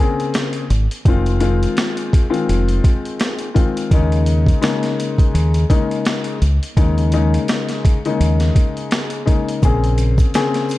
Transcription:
Already playing: grand piano C#3 A#3 C4 G#4
0.20 closed hi-hat
0.34 snare, closed hi-hat
0.53 closed hi-hat
0.70 fingered electric bass G#1, closed hi-hat
0.91 closed hi-hat
1.05 fingered electric bass F1, grand piano D#3 G#3 C4 F4, kick, closed hi-hat
1.26 closed hi-hat
1.40 grand piano D#3 G#3 C4 F4, closed hi-hat
1.63 closed hi-hat
1.77 snare, closed hi-hat
1.97 closed hi-hat
2.13 kick, closed hi-hat
2.30 grand piano D#3 G#3 C4 F4, closed hi-hat
2.49 fingered electric bass F1, closed hi-hat
2.68 closed hi-hat
2.84 kick, closed hi-hat
3.05 closed hi-hat
3.20 snare, closed hi-hat
3.39 closed hi-hat
3.54 grand piano D#3 G#3 C4 F4, kick, closed hi-hat
3.77 closed hi-hat
3.91 fingered electric bass D#2, grand piano C#3 G#3 A#3 D#4, kick, closed hi-hat
4.12 closed hi-hat
4.26 closed hi-hat
4.46 kick, closed hi-hat
4.61 grand piano C#3 G#3 A#3 D#4, snare, closed hi-hat
4.83 snare, closed hi-hat
5.00 closed hi-hat
5.18 kick, closed hi-hat
5.34 fingered electric bass D#2, closed hi-hat
5.54 closed hi-hat
5.69 grand piano C#3 G#3 A#3 D#4, kick, closed hi-hat
5.91 closed hi-hat
6.05 snare, closed hi-hat
6.24 closed hi-hat
6.41 fingered electric bass C#2, closed hi-hat
6.63 closed hi-hat
6.77 fingered electric bass D#2, grand piano C#3 G#3 A#3 D#4, kick, closed hi-hat
6.98 closed hi-hat
7.12 grand piano C#3 G#3 A#3 D#4, closed hi-hat
7.34 closed hi-hat
7.48 snare, closed hi-hat
7.69 snare, closed hi-hat
7.85 kick, closed hi-hat
8.05 grand piano C#3 G#3 A#3 D#4, closed hi-hat
8.20 fingered electric bass D#2, closed hi-hat
8.40 snare, closed hi-hat
8.56 kick, closed hi-hat
8.77 closed hi-hat
8.91 snare, closed hi-hat
9.10 closed hi-hat
9.25 grand piano C#3 G#3 A#3 D#4, kick, closed hi-hat
9.48 closed hi-hat
9.63 fingered electric bass A#1, grand piano C#3 A#3 C4 G#4, kick, closed hi-hat, shaker
9.84 closed hi-hat
9.98 closed hi-hat, shaker
10.18 kick, closed hi-hat, shaker
10.34 grand piano C#3 A#3 C4 G#4, snare, closed hi-hat, shaker
10.54 snare, closed hi-hat
10.69 closed hi-hat, shaker

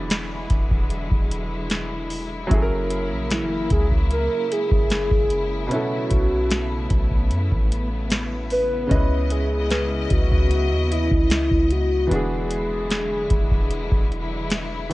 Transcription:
Already playing: 808-style bass E1, string section D3 F#3 G#3 E4, grand piano E3 B3 F#4 G#4 D5, soft synth lead D4
0.10 snare, closed hi-hat
0.50 808-style bass E1, kick, closed hi-hat
0.71 808-style bass E1, kick
0.90 closed hi-hat
1.12 808-style bass E1, kick
1.32 closed hi-hat
1.70 snare, closed hi-hat
2.10 open hi-hat
2.47 string section C#3 F#3 A#3, grand piano F#3 C#4
2.51 808-style bass F#1, grand piano E4 G#4, kick, closed hi-hat
2.56 grand piano A4
2.62 grand piano A#4
2.90 closed hi-hat
3.11 808-style bass A#1
3.31 soft synth lead E4, snare, closed hi-hat
3.41 808-style bass F#1
3.70 808-style bass C#2, soft synth lead G#4, kick, closed hi-hat
3.91 kick
4.11 soft synth lead A#4, closed hi-hat
4.52 soft synth lead G#4, closed hi-hat
4.72 808-style bass F#1, kick
4.90 snare, closed hi-hat
5.11 808-style bass F#1, kick
5.30 closed hi-hat
5.67 grand piano B2 B3
5.71 string section A3 B3, grand piano C#4 E4, soft synth lead F#4, closed hi-hat
5.75 grand piano A4
6.10 808-style bass B1, kick, closed hi-hat
6.51 snare, closed hi-hat
6.90 808-style bass B1, kick, closed hi-hat
7.12 kick
7.31 808-style bass F#2, closed hi-hat
7.52 808-style bass A1, kick
7.72 closed hi-hat
8.10 snare, closed hi-hat
8.50 soft synth lead B4, open hi-hat
8.87 grand piano C#3 C#4
8.91 808-style bass C#2, string section C#3 E4 D#5, grand piano E4 D#5, kick, closed hi-hat
8.96 grand piano B4
9.30 soft synth lead G#4, closed hi-hat
9.71 synth bell B4, snare, closed hi-hat
10.10 808-style bass C#2, soft synth lead F#4, kick, closed hi-hat
10.31 808-style bass C#2, kick
10.51 closed hi-hat
10.71 808-style bass D#2
10.92 soft synth lead E4, closed hi-hat
11.12 808-style bass C#2, kick
11.30 snare, closed hi-hat
11.51 808-style bass C#2, kick
11.71 soft synth lead F#4, closed hi-hat
12.07 grand piano E3 B3
12.11 808-style bass E1, string section D3 F#3 G#3 E4, grand piano D4 F#4, soft synth lead G#4, closed hi-hat
12.16 grand piano G#4
12.51 closed hi-hat
12.91 snare, closed hi-hat
13.30 808-style bass E1, kick, closed hi-hat
13.51 808-style bass E1, kick
13.71 closed hi-hat
13.92 808-style bass E1, kick
14.12 closed hi-hat
14.50 snare, closed hi-hat
14.89 grand piano E3 B3

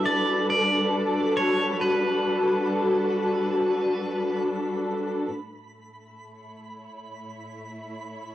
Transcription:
Already playing: string section G3 D4 E4 F#4 A4 B4, synth texture B5
0.06 pedal steel guitar D5
0.50 pedal steel guitar D5
1.37 pedal steel guitar C#5
1.81 pedal steel guitar B4
5.35 string section A2, synth texture B5
5.40 string section A3
5.94 string section E5
6.26 string section C#5
6.32 string section E4

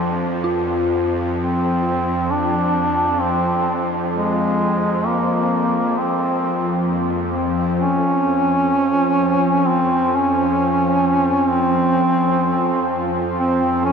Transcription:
Already playing: synth drone F2 F3, duduk C4, synth bell C4, singing bowl F4
0.44 synth bell F4
1.40 duduk C4
2.31 duduk D4
3.21 duduk C4
4.14 duduk G#3
5.06 duduk A#3
5.98 duduk C4
7.80 synth drone F2 F3, duduk C#4, singing bowl A4
9.68 duduk C4
10.16 duduk C#4
11.51 duduk C4
13.39 duduk C4
13.85 duduk C#4

